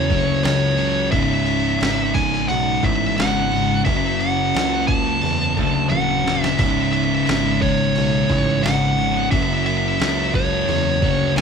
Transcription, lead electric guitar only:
0.00 0.43 C#5 loud
0.44 1.09 C#5 medium
1.12 2.18 E5 loud
2.14 2.48 G#5 loud
2.48 2.84 F#5 loud
2.84 3.19 E5 loud
3.17 3.82 F#5 loud
3.85 4.21 E5 loud
4.20 4.87 F#5 loud
4.87 5.89 A5 loud
5.90 6.43 F#5 loud
6.43 6.59 E5 loud
6.59 6.91 E5 loud
6.93 7.61 E5 loud
7.62 8.67 C#5 loud
8.63 9.28 F#5 loud
9.31 9.65 E5 loud
9.66 10.35 E5 loud
10.35 11.33 C#5 medium
11.37 11.41 G#5 loud

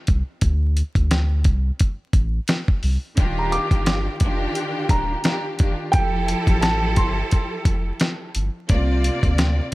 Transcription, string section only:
3.17 4.13 D#3 loud
3.17 4.13 D4 medium
3.17 4.14 F4 loud
3.17 4.14 G4 loud
4.22 5.17 D#3 loud
4.22 5.18 D4 medium
4.22 5.18 F4 loud
4.22 5.18 G4 loud
5.25 5.57 D#3 medium
5.25 5.57 D4 medium
5.25 5.57 F4 medium
5.25 5.57 G4 loud
5.58 5.91 D#3 medium
5.58 5.91 D4 medium
5.58 5.91 F4 medium
5.58 5.91 G4 medium
5.94 8.32 F3 loud
5.94 8.32 E4 medium
5.94 8.33 G4 loud
5.94 8.33 A4 loud
8.69 9.65 C3 loud
8.69 9.66 A#3 loud
8.69 9.66 F4 medium
8.69 9.66 D5 loud
9.71 9.74 C3 loud

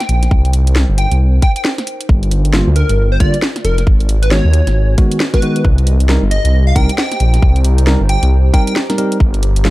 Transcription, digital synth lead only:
0.00 0.50 G5 loud
0.98 1.16 G5 medium
1.43 1.51 G5 medium
1.56 1.62 G5 medium
2.76 3.09 A#4 medium
3.12 3.19 C5 loud
3.20 3.38 D5 medium
3.65 3.82 A#4 medium
4.22 4.29 B4 medium
4.31 4.94 C#5 medium
5.34 5.65 B4 medium
6.31 6.64 D#5 medium
6.67 6.74 F5 medium
6.75 6.93 G5 medium
6.98 7.61 G5 medium
8.09 8.27 G5 medium
8.54 8.62 G5 medium
8.67 8.73 G5 medium

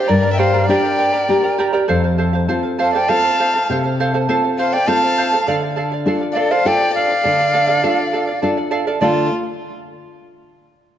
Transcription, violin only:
0.00 0.10 G4 medium
0.09 0.32 A#4 medium
0.32 0.40 E5 soft
0.39 0.68 C5 medium
0.69 1.55 D5 medium
2.80 2.93 C5 medium
2.94 3.10 D5 medium
3.09 3.68 F5 medium
4.59 4.75 C5 medium
4.73 4.89 D5 medium
4.88 5.47 F5 medium
6.32 6.39 D5 soft
6.37 6.53 A4 medium
6.51 6.68 C5 medium
6.67 6.95 D5 medium
6.96 8.39 D5 medium
9.02 9.29 F4 medium

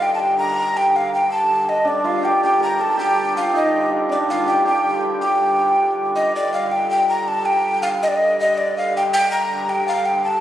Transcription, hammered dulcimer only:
1.85 3.59 D4 medium
2.04 3.35 F4 medium
2.23 2.43 G4 medium
2.43 2.97 G4 medium
2.60 2.85 A#4 medium
2.79 5.72 A4 medium
2.97 4.46 G4 medium
3.36 4.28 F4 medium
3.53 4.15 D#4 medium
4.09 7.82 D4 medium
4.29 7.65 F4 medium
4.46 4.64 G4 medium
4.65 5.21 G4 medium
5.21 8.35 G4 medium

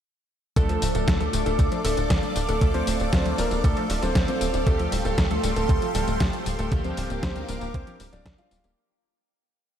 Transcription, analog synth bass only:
0.56 0.78 D2 loud
0.82 0.93 D1 medium
0.95 1.06 D1 medium
1.08 1.29 D2 loud
1.33 1.44 D1 medium
1.46 1.57 D1 medium
1.59 1.70 D2 loud
1.85 1.96 D1 loud
1.98 2.08 D1 medium
2.10 2.21 D2 loud
2.36 2.47 D1 medium
2.49 2.60 D1 medium
2.62 2.83 D2 loud
2.87 2.98 D1 medium
3.00 3.11 D1 medium
3.13 3.35 D2 loud
3.38 3.49 D1 medium
3.51 3.62 D1 medium
3.64 3.75 D2 loud
3.90 4.01 D1 loud
4.02 4.13 D1 loud
4.15 4.26 D2 loud
4.41 4.52 D1 medium
4.54 4.65 D1 medium
4.67 4.88 D2 loud
4.92 5.03 D1 medium
5.05 5.16 D1 medium
5.18 5.40 D2 loud
5.44 5.54 D1 medium
5.56 5.67 D1 medium
5.69 5.80 D2 loud
5.95 6.06 D1 loud
6.08 6.19 D1 medium
6.21 6.31 D2 loud
6.46 6.57 D1 medium
6.59 6.70 D1 loud
6.72 6.94 D2 loud
6.97 7.08 D1 medium
7.10 7.21 D1 medium
7.23 7.45 D2 loud
7.49 7.60 D1 medium
7.61 7.72 D1 medium
7.74 7.85 D2 loud
8.00 8.11 D1 medium
8.13 8.24 D1 loud
8.26 8.36 D2 loud
8.51 8.62 D1 medium
8.64 8.75 D1 medium

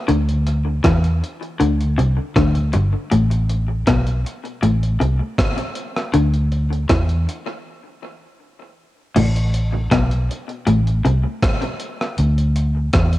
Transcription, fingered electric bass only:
0.09 0.81 D2 loud
0.85 1.21 E2 medium
1.61 1.97 D2 medium
1.99 2.17 C2 medium
2.36 2.72 D2 medium
2.75 2.93 G1 medium
3.12 3.84 A1 loud
3.87 4.23 B1 medium
4.63 4.99 A1 medium
5.01 5.20 C2 medium
6.14 6.86 D2 loud
6.90 7.26 E2 medium
9.16 9.88 A1 loud
9.92 10.28 B1 medium
10.67 11.03 A1 medium
11.05 11.24 C2 medium
12.19 12.91 D2 loud
12.94 13.19 E2 medium

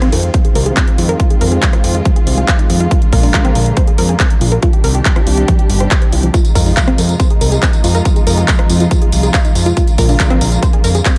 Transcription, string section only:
0.00 2.88 D#3 medium
0.00 4.58 F3 medium
0.00 4.59 G#3 medium
0.00 2.88 C4 medium
0.00 4.59 F4 medium
2.91 4.61 D3 medium
2.91 4.61 A#3 medium
4.63 6.32 C3 medium
4.63 6.32 D#3 medium
4.63 6.32 G3 medium
4.63 6.32 D4 medium
4.63 6.32 G4 medium
6.34 9.73 C3 medium
6.34 11.18 F3 medium
6.34 11.18 G#3 medium
6.34 9.73 D#4 medium
6.34 11.18 F4 medium
9.77 11.18 D3 medium
9.77 11.18 A#3 medium

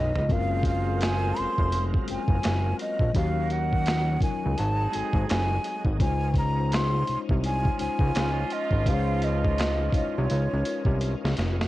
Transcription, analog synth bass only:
0.00 0.13 B1 loud
0.18 0.32 C#2 medium
0.31 1.33 F#1 loud
1.39 1.47 F1 medium
1.59 1.99 F1 medium
2.10 2.18 F#1 medium
2.29 2.40 F#1 medium
2.46 2.74 F#1 medium
3.00 3.12 A#1 medium
3.16 4.18 D#2 loud
4.22 4.31 C#2 medium
4.46 4.56 C#2 medium
4.60 4.88 G#1 loud
4.95 5.04 G#1 soft
5.15 5.26 G#1 loud
5.31 5.59 F#1 loud
5.86 6.03 G#1 medium
6.01 7.04 C#2 loud
7.09 7.18 C2 medium
7.31 7.70 C2 medium
7.81 7.89 C#2 medium
8.01 8.12 C#2 loud
8.16 8.45 C#2 loud
8.72 8.89 G#1 medium
8.87 9.90 C#2 loud
9.94 10.02 C2 medium
10.18 10.28 C2 medium
10.31 10.48 C#2 medium
10.53 10.63 C#2 medium
10.86 11.15 C2 loud
11.25 11.35 C#2 medium
11.38 11.66 F1 loud

